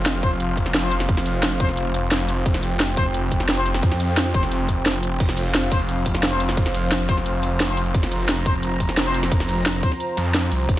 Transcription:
Already playing: detuned saw bass F1, analog synth pad F3 C4 C5 F5
0.06 snare, closed hi-hat
0.23 brass ensemble F3 C4 C5, kick, closed hi-hat
0.40 closed hi-hat
0.57 kick, closed hi-hat
0.66 snare
0.74 snare, closed hi-hat
0.83 brass ensemble F3 C4 C5
0.92 closed hi-hat
1.00 snare
1.09 detuned saw bass F1, kick, closed hi-hat
1.17 snare
1.26 closed hi-hat
1.43 snare, closed hi-hat
1.60 brass ensemble F3 C4 C5, kick, closed hi-hat
1.69 snare
1.77 closed hi-hat
1.94 closed hi-hat
2.11 snare, closed hi-hat
2.29 closed hi-hat
2.46 detuned saw bass F1, analog synth pad G5, kick, closed hi-hat
2.54 snare
2.63 closed hi-hat
2.80 snare, closed hi-hat
2.97 brass ensemble F3 C4 C5, kick, closed hi-hat
3.14 closed hi-hat
3.31 kick, closed hi-hat
3.40 snare
3.49 snare, closed hi-hat
3.57 brass ensemble F3 C4 C5
3.66 closed hi-hat
3.74 snare
3.83 detuned saw bass F2, kick, closed hi-hat
3.92 snare
4.00 closed hi-hat
4.17 snare, closed hi-hat
4.34 detuned saw bass F1, brass ensemble F3 C4 C5, kick, closed hi-hat
4.43 snare
4.52 closed hi-hat
4.69 kick, closed hi-hat
4.86 snare, closed hi-hat
5.03 closed hi-hat
5.20 detuned saw bass F1, analog synth pad F5, kick, closed hi-hat, crash
5.29 snare
5.37 closed hi-hat, ride
5.54 snare, closed hi-hat
5.72 brass ensemble F3 C4 C5, kick, closed hi-hat, ride
5.89 closed hi-hat
6.06 kick, closed hi-hat, ride
6.14 snare
6.23 snare, closed hi-hat
6.32 brass ensemble F3 C4 C5
6.40 closed hi-hat, ride
6.49 snare
6.57 detuned saw bass F1, kick, closed hi-hat
6.66 snare
6.74 closed hi-hat, ride
6.92 snare, closed hi-hat
7.09 brass ensemble F3 C4 C5, kick, closed hi-hat, ride
7.17 snare
7.26 closed hi-hat
7.43 closed hi-hat, ride
7.60 snare, closed hi-hat
7.69 brass ensemble F3 C4 C5
7.77 closed hi-hat, ride
7.94 detuned saw bass F1, analog synth pad A#5, kick, closed hi-hat
8.03 snare
8.12 closed hi-hat, ride
8.29 snare, closed hi-hat
8.46 brass ensemble F3 C4 C5, kick, closed hi-hat, ride
8.63 closed hi-hat
8.80 kick, closed hi-hat, ride
8.89 snare
8.97 snare, closed hi-hat
9.06 brass ensemble F3 C4 C5
9.14 closed hi-hat, ride
9.23 snare
9.32 detuned saw bass F1, kick, closed hi-hat
9.40 snare
9.49 closed hi-hat, ride
9.66 snare, closed hi-hat
9.83 brass ensemble F3 C4 C5, kick, closed hi-hat, ride
9.92 snare
10.00 closed hi-hat
10.17 detuned saw bass F2, closed hi-hat, ride
10.34 snare, closed hi-hat
10.52 detuned saw bass C2, closed hi-hat, ride
10.69 detuned saw bass F1, analog synth pad F5, kick, closed hi-hat

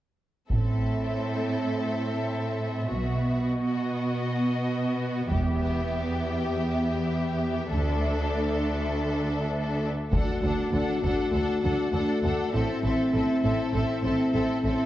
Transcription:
0.50 double bass section A1, cello section A2, viola section C4, violin section A4 E5, taiko
2.90 double bass section B1, cello section B2, viola section B3, violin section F#4
3.53 violin section D#5
5.31 double bass section E1, cello section E2, violin section G4 E5, taiko
7.71 cello section D2, double bass section D2, viola section D4, violin section A4
10.12 cello section D2, double bass section D2, french horn section A3 F#4, viola section D4, violin section A4 F#5, taiko, impact
10.42 cello section D2, double bass section D2, viola section D4, violin section A4 F#5
10.72 cello section D2, double bass section D2, viola section D4, violin section A4 F#5
11.02 cello section D2, double bass section D2, viola section D4, violin section A4 F#5, taiko
11.32 cello section D2, double bass section D2, viola section D4, violin section A4 F#5
11.62 cello section D2, double bass section D2, viola section D4, violin section A4 F#5
11.91 cello section D2, double bass section D2, viola section D4, violin section A4 F#5
12.23 cello section D2, double bass section D2, viola section D4, violin section A4 F#5
12.52 double bass section A1, cello section A2, french horn section C4 E4, viola section C4, violin section A4 E5
12.83 double bass section A1, cello section A2, viola section C4, violin section A4 E5
13.13 double bass section A1, cello section A2, viola section C4, violin section A4 E5
13.42 double bass section A1, cello section A2, viola section C4, violin section A4 E5
13.72 double bass section A1, cello section A2, viola section C4, violin section A4 E5
14.03 double bass section A1, cello section A2, viola section C4, violin section A4 E5
14.32 double bass section A1, cello section A2, viola section C4, violin section A4 E5
14.63 double bass section A1, cello section A2, viola section C4, violin section A4 E5

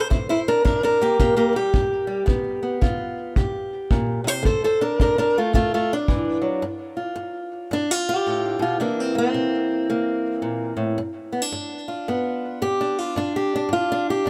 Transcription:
0.10 steel-string acoustic guitar C3 E4 C5, kick
0.29 steel-string acoustic guitar E4 C5
0.48 steel-string acoustic guitar D4 A#4
0.65 steel-string acoustic guitar D4 A#4, kick
0.83 steel-string acoustic guitar D4 A#4
1.01 steel-string acoustic guitar A#3 G4
1.19 steel-string acoustic guitar C3 A#3 G4, kick
1.36 steel-string acoustic guitar A#3 G4
1.53 steel-string acoustic guitar G3 G4
1.73 steel-string acoustic guitar G3, kick
2.07 steel-string acoustic guitar G3
2.26 steel-string acoustic guitar G2 B3, kick
2.63 steel-string acoustic guitar B3
2.81 steel-string acoustic guitar D3 F4, kick
3.36 steel-string acoustic guitar C3 G4, kick
3.91 steel-string acoustic guitar A#2, kick
4.24 steel-string acoustic guitar C3 C5
4.43 steel-string acoustic guitar D3 A4 C5, kick
4.64 steel-string acoustic guitar A4 C5
4.81 steel-string acoustic guitar D4 A#4
5.00 steel-string acoustic guitar D4 A#4, kick
5.18 steel-string acoustic guitar D4 A#4
5.38 steel-string acoustic guitar A3 F4
5.53 steel-string acoustic guitar A2 A3 F4, kick
5.74 steel-string acoustic guitar A3 F4
5.93 steel-string acoustic guitar D4
6.08 steel-string acoustic guitar E3, kick
6.42 steel-string acoustic guitar F#3
6.62 steel-string acoustic guitar G2
6.97 steel-string acoustic guitar F4
7.16 steel-string acoustic guitar G2
7.71 steel-string acoustic guitar G2 D4
7.91 steel-string acoustic guitar F4
8.09 steel-string acoustic guitar G4
8.26 steel-string acoustic guitar A2
8.59 steel-string acoustic guitar B2 F4
8.80 steel-string acoustic guitar C3 E3 A#3 D4
9.00 steel-string acoustic guitar C4
9.15 steel-string acoustic guitar A#3 C4
9.34 steel-string acoustic guitar C3
9.90 steel-string acoustic guitar C3 A#3
10.42 steel-string acoustic guitar A#2
10.77 steel-string acoustic guitar A2
10.98 steel-string acoustic guitar G2
11.32 steel-string acoustic guitar B3
11.42 steel-string acoustic guitar D4
11.52 steel-string acoustic guitar G2
11.88 steel-string acoustic guitar F4
12.08 steel-string acoustic guitar G2 B3
12.62 steel-string acoustic guitar G2 G4
12.81 steel-string acoustic guitar D4
12.98 steel-string acoustic guitar F4
13.16 steel-string acoustic guitar G2 D4
13.36 steel-string acoustic guitar G4
13.56 steel-string acoustic guitar D4
13.69 steel-string acoustic guitar G2
13.73 steel-string acoustic guitar F4
13.92 steel-string acoustic guitar D4
14.10 steel-string acoustic guitar G4
14.26 steel-string acoustic guitar G2 D4

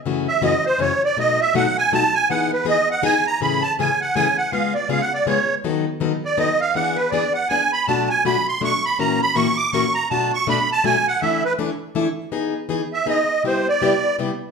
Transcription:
0.05 steel-string acoustic guitar F#2 C#3 E3 A3 C#4 F#4
0.28 accordion E5
0.42 steel-string acoustic guitar F#2 C#3 E3 A3 C#4 F#4, accordion D#5
0.66 accordion C5
0.79 steel-string acoustic guitar F#2 C#3 E3 A3 C#4 F#4, accordion C#5
1.05 accordion D5
1.17 steel-string acoustic guitar B2 F#3 A3 D#4 F#4, accordion D#5
1.41 accordion E5
1.54 steel-string acoustic guitar B2 F#3 A3 D#4 F#4, accordion F#5
1.78 accordion G#5
1.92 steel-string acoustic guitar B2 F#3 A3 D#4 F#4, accordion A5
2.15 accordion G#5
2.30 steel-string acoustic guitar E3 B3 D#4 G#4, accordion F#5
2.53 accordion B4
2.65 steel-string acoustic guitar E3 B3 D#4 G#4, accordion D#5
2.91 accordion F#5
3.02 steel-string acoustic guitar E3 B3 D#4 G#4, accordion G#5
3.27 accordion A#5
3.41 steel-string acoustic guitar A2 C#3 E3 A3 C#4 G#4, accordion B5
3.62 accordion A5
3.79 steel-string acoustic guitar A2 C#3 E3 A3 C#4 G#4, accordion G#5
4.01 accordion F#5
4.15 steel-string acoustic guitar A2 C#3 E3 A3 C#4 G#4, accordion G#5
4.38 accordion F#5
4.52 steel-string acoustic guitar C#3 G#3 B3 F4 G#4, accordion F5
4.74 accordion D5
4.89 steel-string acoustic guitar C#3 G#3 B3 F4 G#4, accordion F5
5.01 accordion F#5
5.14 accordion D5
5.26 steel-string acoustic guitar C#3 G#3 B3 F4 G#4, accordion C#5
5.64 steel-string acoustic guitar D#3 F#3 B3 D#4 A4
6.00 steel-string acoustic guitar D#3 F#3 B3 D#4 A4
6.25 accordion D5
6.37 steel-string acoustic guitar D#3 F#3 B3 D#4 A4, accordion D#5
6.61 accordion F5
6.75 steel-string acoustic guitar E3 B3 D4 G#4, accordion F#5
6.96 accordion B4
7.10 steel-string acoustic guitar E3 B3 D4 G#4, accordion D5
7.33 accordion F#5
7.49 steel-string acoustic guitar E3 B3 D4 G#4, accordion G#5
7.73 accordion B5
7.87 steel-string acoustic guitar B2 F#3 A3 D4 F#4, accordion A5
8.10 accordion G#5
8.25 steel-string acoustic guitar B2 F#3 A3 D4 F#4, accordion B5
8.48 accordion C6
8.60 steel-string acoustic guitar B2 F#3 A3 D4 F#4, accordion C#6
8.85 accordion B5
8.99 steel-string acoustic guitar A#2 E3 A#3 C#4 F#4 A#4, accordion A#5
9.22 accordion B5
9.35 steel-string acoustic guitar A#2 E3 A#3 C#4 F#4 A#4, accordion C#6
9.57 accordion D6
9.72 steel-string acoustic guitar A#2 E3 A#3 C#4 F#4 A#4, accordion C#6
9.94 accordion A#5
10.10 steel-string acoustic guitar B2 F#3 A3 D4 F#4, accordion A5
10.34 accordion C#6
10.47 steel-string acoustic guitar B2 F#3 A3 D4 F#4, accordion B5
10.72 accordion A5
10.84 steel-string acoustic guitar B2 F#3 A3 D4 F#4, accordion G#5
11.08 accordion F#5
11.22 steel-string acoustic guitar E3 A3 D4 E4 A4, accordion E5
11.45 accordion B4
11.58 steel-string acoustic guitar E3 A3 D4 E4 A4
11.95 steel-string acoustic guitar E3 A3 D4 E4 A4
12.32 steel-string acoustic guitar E3 B3 D#4 G#4
12.69 steel-string acoustic guitar E3 B3 D#4 G#4
12.93 accordion E5
13.06 steel-string acoustic guitar E3 B3 D#4 G#4, accordion D#5
13.43 steel-string acoustic guitar C3 G3 B3 E4 G4, accordion C5
13.69 accordion D5
13.81 steel-string acoustic guitar C3 G3 B3 E4 G4
14.19 steel-string acoustic guitar C3 G3 B3 E4 G4

